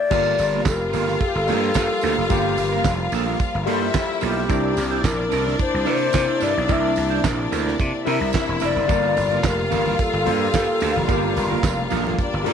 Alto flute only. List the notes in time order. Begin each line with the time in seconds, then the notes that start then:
Already playing: D5
0.68 A#4
1.21 A4
1.28 G4
1.35 A4
2.31 G4
4.24 G4
5.06 A#4
5.61 C5
5.89 C5
6.43 D5
6.72 E5
8.64 D5
9.47 A#4
10.02 A4
11.11 G4